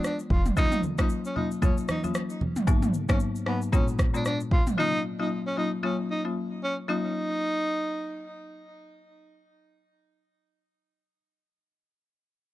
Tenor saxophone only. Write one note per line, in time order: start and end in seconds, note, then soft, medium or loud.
0.06 0.18 D4 medium
0.32 0.44 F4 medium
0.58 0.80 D#4 loud
1.00 1.08 D#4 medium
1.26 1.35 C#4 medium
1.37 1.50 D#4 medium
1.63 1.76 C#4 medium
1.90 2.02 D#4 medium
3.10 3.19 C#4 medium
3.48 3.60 B3 medium
3.74 3.86 C#4 medium
4.15 4.24 D4 medium
4.26 4.39 D4 medium
4.53 4.65 F4 medium
4.79 5.01 D#4 loud
5.21 5.30 D#4 medium
5.47 5.56 C#4 medium
5.58 5.70 D#4 medium
5.84 5.97 C#4 medium
6.10 6.23 D#4 medium
6.63 6.76 C#4 medium
6.89 8.43 D#4 loud